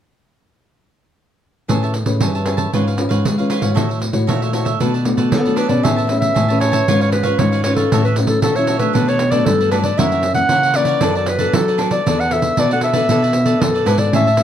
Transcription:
1.68 A2 A3 C#4 G#4 B4 C#5 E5 A5, pandeiro
1.83 C#5 E5 A5, pandeiro
1.94 muted cavaquinho stroke, pandeiro
2.05 A2 C#4 G#4 B4, pandeiro
2.21 G2 E3 G#4 C#5 E5 A5, pandeiro
2.35 C#5 E5 A5, pandeiro
2.46 C#4 G#4 B4 C#5 E5 A5, pandeiro
2.57 C#5 E5 A5, pandeiro
2.73 G#2 G#3 C#4 F4 B4 C#5 F5, pandeiro
2.87 B4 C#5 F5, pandeiro
2.97 C#4 F4 B4, muted cavaquinho stroke, pandeiro
3.09 G#2 B4 C#5 F5, pandeiro
3.25 G#3, pandeiro
3.38 C#4 F4 B4 C#5 F5, pandeiro
3.50 F4 B4 C#5 F5, pandeiro
3.61 G#2 E4 F#4 B4 C#5 F5, pandeiro
3.74 A2 A3 F#4 A4 C#5 E5, pandeiro
3.89 A4 C#5 E5, pandeiro
4.00 muted cavaquinho stroke, pandeiro
4.13 A2 E4 F#4 C#5, pandeiro
4.27 A#2 A3 F#4 A4 C#5 E5, pandeiro
4.42 A4 C#5 E5, pandeiro
4.52 E4 F#4 A4 C#5 E5, pandeiro
4.65 A4 C#5 E5, pandeiro
4.80 B2 A3 D4 F#4 A4 B4 D5, pandeiro
4.94 A4 B4 D5, pandeiro
5.05 A3 D4 F#4, muted cavaquinho stroke, pandeiro
5.17 B2 A4 B4 D5, pandeiro
5.32 F#3 B3 A4, pandeiro
5.45 A3 D4 F#4 A4 B4 D5, pandeiro
5.56 D4 A4 B4 D5, pandeiro
5.68 B2 C#4 G#4 A4 B4 D5, pandeiro
5.83 A2 A3 G#4 C#5 E5 A5, pandeiro
5.96 C#5 E5 A5, pandeiro
6.07 C#4 G#4 B4, muted cavaquinho stroke, pandeiro
6.20 E5, pandeiro
6.34 A2 E3 G#4 C#5 E5 A5, pandeiro
6.48 C#4 G#4 B4 C#5 E5 A5, pandeiro
6.60 G#4 C#5 E5 A5, pandeiro
6.72 C#5 E5 A5, pandeiro
6.88 G#2 G#3 C#4 F4 B4 C#5 F5, pandeiro
7.01 B4 C#5 F5, pandeiro
7.12 B4, muted cavaquinho stroke, pandeiro
7.23 C#4 F4 B4 C#5 F5, pandeiro
7.39 G#2 G#3 C#5, pandeiro
7.52 B4 C#5 F5, pandeiro
7.64 C#4 F4 B4 C#5 F5, pandeiro
7.76 A4 B4 C#5 F5, pandeiro
7.92 A2 F#3 C#4 E4 F#4 A4 C#5 E5, pandeiro
8.05 A4 B4 C#5 E5, pandeiro
8.16 F#3 C#4 E4, muted cavaquinho stroke, pandeiro
8.27 A4, pandeiro
8.42 A#2 F#4 A4 C#5 E5, pandeiro
8.56 F#3 C#4 E4 A4 C#5 E5, pandeiro
8.67 F#4 A4 C#5 E5, pandeiro
8.79 F#3 A3 D4 A4 B4 C#5 E5, pandeiro
8.93 B2 D4 A4 B4 D5, pandeiro
9.08 A4 B4 C#5 D5, pandeiro
9.19 muted cavaquinho stroke, pandeiro
9.31 F#3 A3 D4 A4 B4 D5, pandeiro
9.46 G2 A4, pandeiro
9.60 A4 B4 D5, pandeiro
9.71 F#3 A3 D4 A4 B4 D5, pandeiro
9.83 A4 B4 D5, pandeiro
9.98 F#2 E3 A#3 C#4 E4 A#4 C#5 E5 F#5, pandeiro
10.12 A#4 C#5 F#5, pandeiro
10.23 muted cavaquinho stroke, pandeiro
10.34 E3 A#3 C#4 F#5, pandeiro
10.49 C#3 E4 A#4 C#5 F#5, pandeiro
10.63 A#4 C#5 F#5, pandeiro
10.74 E3 A#3 C#4 E4 A#4 C#5 D5 F#5, pandeiro
10.85 A#4 C#5 F#5, pandeiro
11.01 F#2 F#3 B3 D4 A4 B4 D5, pandeiro
11.15 A4 B4 D5, pandeiro
11.26 B4, muted cavaquinho stroke, pandeiro
11.39 B3 D4 A4 B4 D5, pandeiro
11.53 F#3 A4, pandeiro
11.68 A4 B4 D5, pandeiro
11.78 B3 D4 A4 B4 D5, pandeiro
11.91 A4 B4 D5, pandeiro
12.06 E2 E3 B3 D4 E4 A4 B4 D5, pandeiro
12.20 A4 B4 D5 F#5, pandeiro
12.31 B3 D4 A4 E5, muted cavaquinho stroke, pandeiro
12.42 pandeiro
12.57 B2 E4 A4 B4 D5, pandeiro
12.71 B3 D4 A4 B4 D5 F#5, pandeiro
12.81 E4 A4 B4 D5 E5, pandeiro
12.93 B3 D4 A4 B4 D5, pandeiro
13.09 B2 E3 B3 D4 E4 A4 B4 D5, pandeiro
13.22 A4 B4 D5, pandeiro
13.33 muted cavaquinho stroke, pandeiro
13.45 B3 D4 A4 B4 D5, pandeiro
13.60 F#2 B2 A4, pandeiro
13.74 A4 B4 D5, pandeiro
13.86 G#2 B3 D4 E4 A4 B4 D5, pandeiro
13.97 A4 B4 D5, pandeiro
14.11 A2 G#3 C#4 E4 G#4 C#5 E5 A5, pandeiro
14.27 C#5 E5 A5, pandeiro
14.37 G#3 C#4 E4, muted cavaquinho stroke, pandeiro

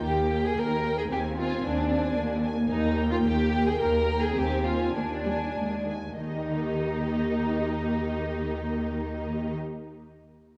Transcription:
Already playing: A#3 G5
0.03 D#2 G4
0.32 G5
0.46 G#4
0.56 D#2 A#4
0.83 G5
0.98 G#4
1.09 D#2 C4 G4 G#5
1.37 F4 G#5
1.63 D#2 D4
1.91 G#5
2.16 D#2 A#3
2.43 G#5
2.69 D#2 D#4
2.97 G5
3.11 F4
3.23 D#2 G4
3.53 G5
3.67 G#4
3.78 D#2 A#4
4.08 G5
4.22 G#4
4.36 D#2 C4 G4 G#5
4.64 F4 G#5
4.94 D#2 A#3 D4
5.24 G3 G#5
5.56 D#2 G#3
5.88 G#5
6.20 D#2 D#3 A#3 D#4 G4 D#5

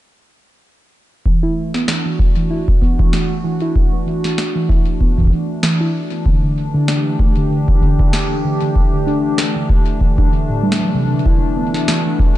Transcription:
1.26 E3, kick
1.38 A3
1.43 E4
1.74 B3 F#4, snare
1.79 D4
1.88 E3, snare
2.06 E3
2.19 kick
2.37 E3
2.51 E4
2.68 kick
2.82 B3, kick
2.99 E3, kick
3.13 E3, snare
3.44 E3
3.62 E4
3.76 kick
3.93 B3
4.07 E3
4.24 E3, snare
4.38 snare
4.56 E3
4.69 E4, kick
5.01 B3, kick
5.18 E3, kick
5.20 kick
5.25 kick
5.27 kick
5.30 E3, kick
5.63 E3, snare
5.81 E4
6.12 B3
6.26 D3, kick
6.43 D3
6.74 D3
6.79 G4
6.88 D4, snare
7.19 A3, kick
7.37 D3
7.51 D3
7.68 kick
7.82 D3, kick
7.99 D4, kick
8.13 snare
8.31 A3
8.44 D3
8.62 D3
8.76 kick
8.93 D3
9.07 D4
9.38 A3, snare
9.56 D3
9.69 D3, kick
10.01 D3, kick
10.18 D4, kick
10.32 D3
10.49 A2
10.63 G3
10.72 snare
10.81 F#3
10.94 C3
11.12 D3
11.26 E4, kick
11.57 B3
11.72 F#4, snare
11.88 E3, snare
12.06 E3
12.19 E3, kick

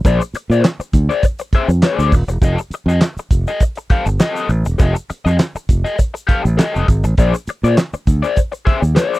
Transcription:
0.05 A#1 G#4 C5 D5, kick, closed hi-hat, shaker
0.21 muted overdriven electric guitar stroke, shaker
0.34 muted fingered electric bass stroke, muted overdriven electric guitar stroke, closed hi-hat, shaker
0.50 A#2 G#4 C5 D5, shaker
0.64 muted overdriven electric guitar stroke, snare, clap, closed hi-hat, shaker
0.80 muted fingered electric bass stroke, muted overdriven electric guitar stroke, shaker
0.93 D2, kick, closed hi-hat, shaker
1.09 G#4 C5 D5, shaker
1.23 muted overdriven electric guitar stroke, kick, closed hi-hat, shaker
1.39 muted overdriven electric guitar stroke, closed hi-hat, shaker
1.53 G#4 C5 E5, muted fingered electric bass stroke, kick, closed hi-hat
1.68 F2, muted overdriven electric guitar stroke, shaker
1.82 G4 B4 C#5, snare, clap, closed hi-hat, shaker
1.94 G#4 C5 D5
1.99 D2, shaker
2.12 D#1, muted overdriven electric guitar stroke, kick, open hi-hat, shaker
2.28 E1, muted overdriven electric guitar stroke, closed hi-hat, shaker
2.41 F1 G4 A4 D#5, kick, closed hi-hat, shaker
2.58 muted overdriven electric guitar stroke, shaker
2.70 muted fingered electric bass stroke, muted overdriven electric guitar stroke, closed hi-hat, shaker
2.86 F2 G4 A4 D#5, shaker
3.01 muted overdriven electric guitar stroke, snare, clap, closed hi-hat, shaker
3.17 muted fingered electric bass stroke, muted overdriven electric guitar stroke, shaker
3.31 F1, kick, closed hi-hat, shaker
3.47 G4 A4 D#5, shaker
3.60 muted overdriven electric guitar stroke, kick, closed hi-hat, shaker
3.75 muted overdriven electric guitar stroke, closed hi-hat, shaker
3.90 G4 A4 F5, muted fingered electric bass stroke, kick, closed hi-hat
4.06 G1, muted overdriven electric guitar stroke, shaker
4.20 G4 A4 D#5, snare, clap, closed hi-hat, shaker
4.36 shaker
4.49 A1, muted overdriven electric guitar stroke, closed hi-hat, shaker
4.65 E1, muted overdriven electric guitar stroke, shaker
4.78 F1 G4 A4 D#5, kick, closed hi-hat, shaker
4.96 muted overdriven electric guitar stroke, shaker
5.10 muted overdriven electric guitar stroke, muted fingered electric bass stroke, closed hi-hat, shaker
5.25 F2 G4 A4 D#5, shaker
5.39 muted overdriven electric guitar stroke, snare, clap, closed hi-hat, shaker
5.55 muted fingered electric bass stroke, muted overdriven electric guitar stroke, shaker
5.69 F1, kick, closed hi-hat, shaker
5.84 G4 A4 D#5, shaker
5.98 muted overdriven electric guitar stroke, kick, closed hi-hat, shaker
6.14 muted overdriven electric guitar stroke, closed hi-hat, shaker
6.27 G4 A4 F5, muted fingered electric bass stroke, kick, closed hi-hat
6.44 A1, muted overdriven electric guitar stroke, shaker
6.57 G4 A4 D#5, snare, clap, closed hi-hat, shaker
6.76 F1, shaker
6.87 G#1, muted overdriven electric guitar stroke, kick, closed hi-hat, shaker
7.04 A1, muted overdriven electric guitar stroke, closed hi-hat, shaker
7.17 A#1 G#4 C5 D5, kick, closed hi-hat, shaker
7.34 muted overdriven electric guitar stroke, shaker
7.47 muted fingered electric bass stroke, muted overdriven electric guitar stroke, closed hi-hat, shaker
7.63 A#2 G#4 C5 D5, shaker
7.77 muted overdriven electric guitar stroke, snare, clap, closed hi-hat, shaker
7.93 muted fingered electric bass stroke, muted overdriven electric guitar stroke, shaker
8.07 D2, kick, closed hi-hat, shaker
8.22 G#4 C5 D5, shaker
8.36 kick, closed hi-hat, shaker
8.52 muted overdriven electric guitar stroke, closed hi-hat, shaker
8.65 G#4 C5 E5, muted fingered electric bass stroke, kick, closed hi-hat
8.82 D#2, muted overdriven electric guitar stroke, shaker
8.95 G4 B4 C#5, snare, clap, closed hi-hat, shaker
9.07 G#4 C5 D5
9.14 shaker

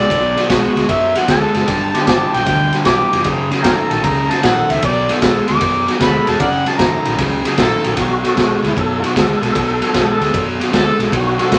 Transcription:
Already playing: B3 D4 A4 D5
0.10 B1 B2 F#3, kick, snare, ride
0.36 B2 F#3, snare, ride
0.49 B1 B2 G#3 B3 D4 F#4, kick, snare, ride
0.75 D2 B2 G#3, snare, ride
0.89 F#2 B2 F#3 E5, kick, snare, ride
1.15 B2 F#3 F#5, snare, ride
1.28 D2 B2 G#3 B3 D4 A4 A5, kick, snare, ride
1.54 F#1 B2 G#3, snare, ride
1.67 G1 G2 D3, kick, snare, ride
1.94 G2 D3 B3 F4 G4, snare, ride
2.07 G1 G2 E3 A5, kick, snare, ride
2.33 B1 G2 E3 G5, snare, ride
2.46 D2 G2 D3 G5, kick, snare, ride
2.72 G2 D3, snare, ride
2.85 B1 G2 E3 B3 F4 G4 D6, kick, snare, ride
3.12 F1 G2 E3, snare, ride
3.24 F#1 F#2 C#3, kick, snare, ride
3.51 F#2 C#3, snare, ride
3.63 F#1 F#2 D#3 A#3 E4 A4 F5 G5 A#5, kick, snare, ride
3.90 A#1 F#2 D#3 A5, snare, ride
4.04 C#2 F#2 C#3 A#5, kick, ride
4.30 F#2 C#3 A5, snare, ride
4.43 A#1 F#2 D#3 A#3 E4 A4 F#5, kick, snare, ride
4.69 C#2 F#2 D#3 E5, snare, ride
4.82 B1 B2 F#3 D5, kick, ride
5.09 B2 F#3 B3 D4 A4, snare, ride
5.22 B1 B2 G#3, kick, snare, ride
5.47 D2 B2 G#3 D6, snare, ride
5.61 F#2 B2 F#3, kick, snare, ride
5.87 B2 F#3, snare, ride
6.00 D2 B2 G#3 B3 D4 A4 B5, kick, snare, ride
6.27 E1 B2 G#3 A5, snare, ride
6.39 F#1 F#2 C#3 A#4 D5 F#5, kick, ride
6.66 F#2 C#3 A5, snare, ride
6.79 F#1 F#2 D#3 A3 A#3 E4 A#5, kick, snare, ride
7.05 A#1 F#2 D#3, snare, ride
7.18 C#2 F#2 C#3, kick, snare, ride
7.45 F#2 C#3, snare, ride
7.57 A#1 F#2 D#3 A#3 E4 A4, kick, snare, ride
7.83 A#1 F#2 D#3, snare, ride
7.97 B1 B2 F#3 F#4, kick, snare, ride
8.24 B2 F#3 B3 D4 A4, snare, ride
8.36 B1 B2 G#3, kick, snare, ride
8.62 D2 B2 G#3 E4, snare, ride
8.75 F#2 B2 F#3 A4, kick, ride
9.00 B2 F#3 F4
9.04 F#4, snare, ride
9.16 D2 B2 G#3 B3 D4 A4, kick, snare, ride
9.41 B1 B2 G#3, snare, ride
9.46 A4
9.55 B1 B2 F#3, kick, snare, ride
9.82 B2 F#3, snare, ride
9.94 B1 B2 G#3 B3 D4 A4, kick, snare, ride
10.20 D2 B2 G#3, snare, ride
10.33 F#2 B2 F#3, kick, ride
10.60 B2 F#3, snare, ride
10.72 D2 B2 G#3 B3 D4 A4, kick, snare, ride
10.99 B1 B2 G#3, snare, ride
11.12 B1 B2 F#3 F#4, kick, ride
11.38 B2 F#3 B3 D4 A4, snare, ride
11.51 B1 B2 G#3, kick, snare, ride

